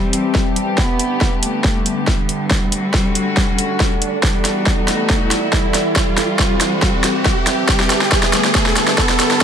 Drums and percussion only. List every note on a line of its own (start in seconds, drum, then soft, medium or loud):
0.13 closed hi-hat medium
0.35 kick medium
0.35 snare medium
0.56 closed hi-hat medium
0.78 kick loud
0.78 snare medium
0.99 closed hi-hat medium
1.21 kick loud
1.21 snare medium
1.43 closed hi-hat medium
1.64 kick loud
1.64 snare medium
1.86 closed hi-hat medium
2.07 kick loud
2.07 snare medium
2.29 closed hi-hat medium
2.51 kick loud
2.51 snare medium
2.72 closed hi-hat medium
2.94 kick loud
2.94 snare medium
3.15 closed hi-hat medium
3.37 kick loud
3.37 snare medium
3.58 closed hi-hat medium
3.80 kick loud
3.80 snare medium
4.02 closed hi-hat medium
4.23 kick loud
4.23 snare medium
4.45 snare medium
4.45 closed hi-hat medium
4.66 kick loud
4.66 snare medium
4.88 snare medium
4.88 closed hi-hat medium
5.10 kick loud
5.10 snare medium
5.31 snare medium
5.31 closed hi-hat medium
5.53 kick loud
5.53 snare medium
5.74 snare medium
5.74 closed hi-hat medium
5.96 kick medium
5.96 snare medium
6.18 snare medium
6.18 closed hi-hat medium
6.39 kick medium
6.39 snare medium
6.61 snare medium
6.61 closed hi-hat medium
6.82 kick medium
6.82 snare medium
7.04 snare medium
7.04 closed hi-hat medium
7.25 kick loud
7.25 snare medium
7.47 snare medium
7.47 closed hi-hat medium
7.69 kick loud
7.69 snare loud
7.80 snare medium
7.90 snare medium
7.90 closed hi-hat medium
8.01 snare medium
8.12 kick loud
8.12 snare loud
8.23 snare medium
8.33 snare medium
8.33 closed hi-hat medium
8.44 snare medium
8.55 kick loud
8.55 snare loud
8.66 snare medium
8.76 snare loud
8.76 closed hi-hat medium
8.88 snare medium
8.98 kick loud
8.98 snare medium
9.09 snare medium
9.20 snare loud
9.20 closed hi-hat medium
9.31 snare medium